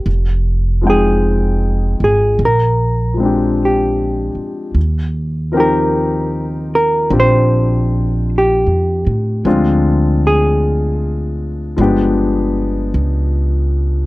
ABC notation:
X:1
M:4/4
L:1/8
Q:"Swing" 1/4=51
K:Eb
V:1 name="Hollow-body jazz guitar"
G A2 A B2 G2- | G B2 B c2 G2- | G A3 z4 |]
V:2 name="Grand piano"
z [F,A,CEg]3 z [F,A,CDG]3 | z [F,CEGB]3 [CDFG]4 | [F,A,CDF]4 [F,A,=B,DG]4 |]
V:3 name="Upright bass" clef=bass
F,,,3 A,,, B,,,3 z | E,,4 B,,,2- (3B,,, F,, =A,, | D,,4 G,,,2 _D,,2 |]